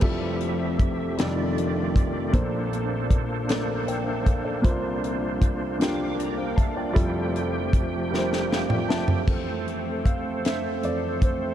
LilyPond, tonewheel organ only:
\new Staff \with { instrumentName = "Tonewheel organ" } { \time 6/8 \key f \major \tempo 4. = 52 << { r2. | r2. | r4. <f'' d'''>8 <d'' bes''>16 <bes' g''>16 <a' f''>16 <f' d''>16~ | <f' d''>16 r2 r8. |
r2. | } \\ { <f a g' e''>4. <ees aes a f' g' d''>4. | <bes d' a' c''>2. | <bes d' e' f' c''>2. | <f a g' d'' g''>2. |
<a c' a' bes' c''>2. | } >> }